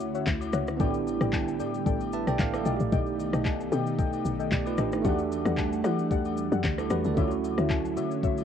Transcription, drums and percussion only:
0.00 shaker
0.15 shaker
0.27 kick, clap, shaker
0.41 high agogo, shaker
0.53 cross-stick, shaker
0.67 cross-stick, shaker
0.80 kick, high agogo, shaker
0.94 shaker
1.07 high agogo, shaker
1.21 cross-stick, shaker
1.33 kick, clap, low woodblock, shaker
1.48 shaker
1.60 high agogo, shaker
1.74 shaker
1.86 kick, shaker
2.00 high agogo, shaker
2.13 shaker
2.27 cross-stick, shaker
2.39 kick, clap, shaker
2.53 cross-stick, high agogo, shaker
2.65 shaker
2.80 shaker
2.92 kick, high agogo, shaker
3.06 shaker
3.19 high agogo, shaker
3.33 cross-stick, shaker
3.45 kick, clap, low woodblock, shaker
3.60 shaker
3.72 high agogo, shaker
3.87 shaker
3.99 kick, shaker
4.13 high agogo, shaker
4.25 shaker
4.40 shaker
4.52 kick, clap, shaker
4.66 high agogo, shaker
4.78 cross-stick, shaker
4.92 cross-stick, shaker
5.05 kick, high agogo, shaker
5.19 shaker
5.32 high agogo, shaker
5.45 cross-stick, shaker
5.57 kick, clap, low woodblock, shaker
5.73 shaker
5.84 cross-stick, high agogo, shaker
5.99 shaker
6.11 kick, shaker
6.25 high agogo, shaker
6.37 shaker
6.52 shaker
6.64 kick, clap, shaker
6.78 cross-stick, high agogo, shaker
6.90 cross-stick, shaker
7.04 shaker
7.17 kick, high agogo, shaker
7.31 shaker
7.44 high agogo, shaker
7.58 cross-stick, shaker
7.70 kick, clap, low woodblock, shaker
7.85 shaker
7.97 high agogo, shaker
8.11 shaker
8.23 kick, shaker
8.38 high agogo, shaker

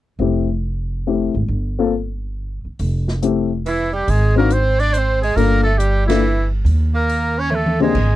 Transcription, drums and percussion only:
2.79 open hi-hat
3.08 snare
3.23 closed hi-hat
3.66 open hi-hat
4.08 open hi-hat
4.50 closed hi-hat
4.80 open hi-hat
4.94 closed hi-hat
5.23 open hi-hat
5.38 open hi-hat
5.80 closed hi-hat
6.10 snare, ride
6.66 open hi-hat
7.09 open hi-hat
7.52 high tom
7.66 high tom
7.80 mid tom
7.95 kick, crash

